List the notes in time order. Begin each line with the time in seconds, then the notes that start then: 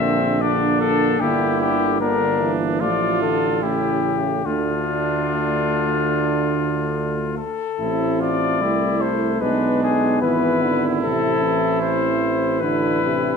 Already playing: A#1 D3 A#3 E5
0.01 C4
0.41 D3 A#3 D4 D5
0.81 A4
1.20 G1 D3 A#3 E4 G4
1.61 G4
2.00 D3 A#3 D4 A#4
2.42 E3
2.80 A1 F3 A3 F4 D5
3.22 D3 A4
3.62 C#3 A3 E4 G4
4.45 D2 D3 A3 D4 F4
7.37 A4
7.79 A1 A3 C4 E4
8.20 F4 D5
8.61 C2 G3 A3 E4
9.01 A3 C5
9.40 B1 G#3 B3 D4 B4
9.83 G#4
10.21 G#1 E3 E4 B4
10.63 D3
11.02 A1 C3 C4 A4
11.43 E3
11.81 C4 C5
12.60 D3 D4 E4 B4
13.02 C3